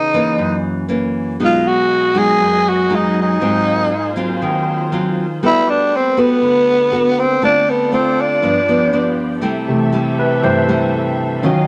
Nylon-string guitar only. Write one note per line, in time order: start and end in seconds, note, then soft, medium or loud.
0.00 0.37 C#3 medium
0.14 0.86 E3 medium
0.14 0.86 A#3 medium
0.14 0.86 C#4 medium
0.38 1.37 F#2 medium
0.89 1.36 E3 soft
0.89 1.36 A#3 soft
0.89 1.36 C#4 medium
1.40 2.38 B2 medium
1.40 2.11 F#3 soft
1.40 2.11 G#3 soft
1.40 2.12 D#4 medium
2.14 2.87 F#3 medium
2.14 2.86 G#3 medium
2.14 2.87 D#4 medium
2.40 3.39 F#2 medium
2.90 3.37 F#3 medium
2.90 3.37 G#3 soft
2.90 3.37 D#4 medium
3.41 4.39 G#2 medium
3.41 3.91 F#3 soft
3.41 3.91 C4 medium
3.41 3.92 F4 medium
4.16 4.88 F#3 soft
4.16 4.88 C4 medium
4.16 4.88 F4 medium
4.42 5.40 D#3 medium
4.92 5.24 F#3 medium
4.92 5.25 C4 medium
4.92 5.25 F4 medium
5.43 6.41 G3 medium
5.43 5.93 B3 soft
5.43 5.92 F#4 soft
5.43 5.93 A4 medium
6.17 6.89 B3 medium
6.17 6.89 F#4 soft
6.17 6.89 A4 medium
6.42 7.40 D3 medium
6.91 7.25 B3 soft
6.91 7.25 F#4 soft
6.91 7.25 A4 medium
7.42 8.40 D3 medium
7.42 7.89 A3 soft
7.42 7.89 C4 soft
7.42 7.89 F4 medium
7.92 8.41 A3 soft
7.92 8.41 C4 soft
7.92 8.41 F4 medium
8.42 9.41 G2 medium
8.42 8.58 F3 soft
8.42 8.58 B3 medium
8.42 8.58 D4 medium
8.68 8.90 F3 medium
8.68 8.90 B3 medium
8.68 8.90 D4 medium
8.93 9.39 F3 soft
8.93 9.39 B3 medium
8.93 9.40 D4 medium
9.41 10.40 C3 medium
9.41 9.89 G3 medium
9.41 9.89 A3 medium
9.41 9.89 E4 medium
9.92 10.43 G3 soft
9.92 10.43 A3 soft
9.92 10.44 E4 medium
10.43 11.41 G2 medium
10.68 11.40 G3 medium
10.68 11.40 A3 medium
10.68 11.40 E4 medium
11.43 11.67 D#3 medium
11.43 11.67 F#3 soft
11.43 11.67 C#4 soft
11.43 11.67 F4 medium